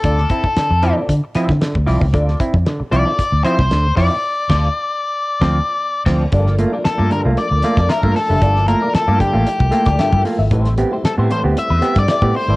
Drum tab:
CC |----------------|----------------|--x-----------x-|----------------|
HH |x-x-x-x-x-x-x-o-|x-x-x-x-x-x-x-o-|----------------|x-x-x-x-x-x-x-o-|
SD |-o--o-----ooo-o-|-o--o-----ooo-o-|--o------o----o-|-o--o-----ooo-o-|
BD |o-oo----o--o-o-o|o-oo----o--o--o-|--o------o----o-|o----------o-o--|

CC |----------------|----------------|
HH |x-x-x-x-x-xxx-o-|xxx-x-x-x-xxx-o-|
SD |-o--o-----ooo-o-|-o--o-----ooo---|
BD |o-----o--o-o-o--|o----------o-o--|